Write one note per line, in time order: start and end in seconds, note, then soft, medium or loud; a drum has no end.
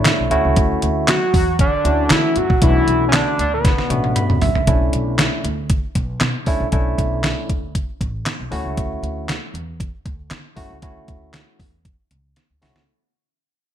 0.00 0.30 A3 medium
0.00 0.31 D4 medium
0.00 0.32 D4 loud
0.00 0.30 E4 medium
0.00 0.31 C#5 medium
0.05 snare loud
0.05 clap loud
0.05 closed hi-hat loud
0.19 0.29 B1 medium
0.31 0.43 D2 loud
0.31 1.13 A3 medium
0.31 1.14 C#4 medium
0.31 1.14 E4 loud
0.31 1.14 F#4 loud
0.31 closed hi-hat medium
0.45 0.55 C#2 medium
0.56 0.79 D2 loud
0.56 kick loud
0.56 closed hi-hat medium
0.82 1.16 D2 loud
0.82 closed hi-hat medium
1.08 1.56 F#4 loud
1.08 snare loud
1.08 clap loud
1.08 closed hi-hat loud
1.34 1.67 E2 loud
1.34 kick loud
1.34 open hi-hat medium
1.59 2.13 D4 loud
1.59 kick loud
1.59 closed hi-hat loud
1.85 2.07 D2 loud
1.85 2.44 A3 medium
1.85 2.44 C#4 medium
1.85 2.44 E4 medium
1.85 2.45 F#4 medium
1.85 closed hi-hat medium
2.10 2.22 D3 loud
2.10 2.39 E4 loud
2.10 snare loud
2.10 clap medium
2.10 closed hi-hat loud
2.36 2.48 F#2 medium
2.36 2.63 F#4 loud
2.36 closed hi-hat medium
2.50 2.60 A#1 medium
2.50 kick medium
2.62 2.84 B1 loud
2.62 3.40 A3 medium
2.62 3.40 C#4 medium
2.62 3.41 D4 medium
2.62 3.05 E4 loud
2.62 3.41 F#4 medium
2.62 kick loud
2.62 closed hi-hat medium
2.87 3.21 B1 loud
2.87 closed hi-hat medium
3.08 3.17 C#4 medium
3.13 3.40 D4 loud
3.13 snare loud
3.13 clap loud
3.13 closed hi-hat medium
3.39 3.72 D2 loud
3.39 3.52 D4 loud
3.39 closed hi-hat medium
3.54 4.38 B3 medium
3.65 kick loud
3.65 snare medium
3.65 closed hi-hat loud
3.78 snare medium
3.90 4.12 A1 medium
3.90 4.49 A3 medium
3.90 4.49 C#4 medium
3.90 4.49 D4 medium
3.90 4.49 F#4 medium
3.90 closed hi-hat medium
3.90 high tom medium
4.04 high tom medium
4.16 4.40 B5 medium
4.16 closed hi-hat medium
4.16 mid tom medium
4.29 4.40 B1 medium
4.29 mid tom medium
4.42 4.53 A1 medium
4.42 4.66 E5 medium
4.42 floor tom loud
4.42 open hi-hat medium
4.55 4.65 A#1 medium
4.55 floor tom loud
4.67 4.89 B1 loud
4.67 5.46 A3 medium
4.67 5.46 C#4 medium
4.67 5.46 D4 medium
4.67 5.46 E4 medium
4.67 kick loud
4.67 closed hi-hat loud
4.93 5.26 B1 medium
4.93 closed hi-hat medium
5.19 snare loud
5.19 clap medium
5.19 closed hi-hat loud
5.44 5.77 D2 loud
5.44 closed hi-hat medium
5.70 kick loud
5.70 closed hi-hat loud
5.95 6.17 B1 loud
5.95 kick medium
5.95 closed hi-hat medium
6.21 6.32 B2 loud
6.21 snare loud
6.21 clap medium
6.21 closed hi-hat medium
6.46 6.58 D2 medium
6.46 6.67 A3 medium
6.46 6.67 C#4 medium
6.46 6.67 D4 medium
6.46 6.67 E4 loud
6.46 kick medium
6.46 open hi-hat medium
6.60 6.71 A#1 medium
6.72 6.94 B1 loud
6.72 7.50 A3 medium
6.72 7.51 C#4 medium
6.72 7.51 D4 medium
6.72 7.51 E4 loud
6.72 kick loud
6.72 closed hi-hat medium
6.98 7.31 B1 loud
6.98 kick medium
6.98 closed hi-hat medium
7.24 snare loud
7.24 clap medium
7.24 closed hi-hat medium
7.49 7.83 D2 medium
7.49 kick loud
7.49 closed hi-hat medium
7.75 kick loud
7.75 closed hi-hat loud
8.01 8.22 A1 medium
8.01 kick loud
8.01 closed hi-hat medium
8.26 snare loud
8.26 clap medium
8.26 closed hi-hat loud
8.40 8.50 B1 medium
8.51 8.63 D2 loud
8.51 9.34 A3 loud
8.51 9.34 C#4 medium
8.51 9.34 E4 medium
8.51 9.34 F#4 loud
8.51 open hi-hat medium
8.65 8.76 C#2 medium
8.77 8.99 D2 medium
8.77 kick loud
8.77 closed hi-hat medium
9.03 9.36 D2 loud
9.03 closed hi-hat medium
9.29 snare loud
9.29 clap medium
9.29 closed hi-hat medium
9.54 9.87 E2 loud
9.54 closed hi-hat medium
9.80 kick loud
9.80 closed hi-hat loud
10.06 10.27 D2 medium
10.06 kick loud
10.06 closed hi-hat medium
10.31 10.43 D3 loud
10.31 snare loud
10.31 clap medium
10.31 closed hi-hat medium
10.56 10.68 F#2 loud
10.56 10.77 A3 medium
10.56 10.77 C#4 medium
10.56 10.77 E4 medium
10.56 10.77 F#4 loud
10.56 kick medium
10.56 open hi-hat medium
10.70 10.81 C#2 medium
10.82 11.04 D2 loud
10.82 11.61 A3 medium
10.82 11.61 C#4 medium
10.82 11.61 E4 medium
10.82 11.61 F#4 medium
10.82 kick loud
10.82 closed hi-hat medium
11.08 11.42 D2 loud
11.08 kick loud
11.08 closed hi-hat medium
11.34 snare loud
11.34 clap medium
11.34 closed hi-hat medium
11.59 11.93 E2 medium
11.59 kick loud
11.59 open hi-hat medium
11.85 kick loud
11.85 closed hi-hat loud
12.11 12.33 C#2 medium
12.11 closed hi-hat medium
12.36 snare medium
12.36 closed hi-hat medium
12.50 12.60 D2 medium
12.62 12.74 C2 medium
12.62 12.82 A3 medium
12.62 12.82 C#4 medium
12.62 12.82 E4 medium
12.62 12.82 F#4 loud
12.62 snare medium
12.62 open hi-hat medium
12.75 12.86 C#2 medium
12.75 snare medium